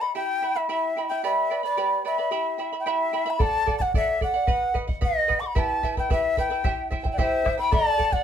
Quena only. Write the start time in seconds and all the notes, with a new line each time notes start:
0.01 B5
0.15 G5
0.56 E5
0.71 E5
1.09 G5
1.25 E5
1.65 D5
2.07 E5
2.80 G5
2.89 E5
3.30 B5
3.41 A5
3.78 F#5 A5
3.96 E5
4.23 F#5
5.05 D#5
5.40 D6
5.46 B5
5.58 A5
5.99 G5
6.12 E5
6.39 G5
7.12 G5
7.18 E5
7.58 B5
7.73 A5
8.13 F#5